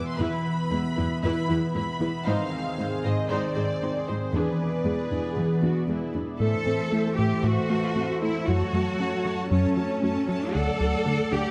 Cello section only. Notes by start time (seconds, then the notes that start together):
0.19 E2
0.71 E2
0.98 E2
1.23 E2
1.50 E2
1.75 E2
2.00 E2
2.26 G#2
2.78 G#2
3.04 G#2
3.30 G#2
3.56 G#2
3.83 G#2
4.09 G#2
4.33 E2
4.85 E2
5.11 E2
5.37 E2
5.61 E2
5.88 E2
6.14 E2
6.39 A4
7.17 G4
7.43 F#4
8.23 E4
8.48 F#4
9.51 C#4
10.54 A4
11.32 G4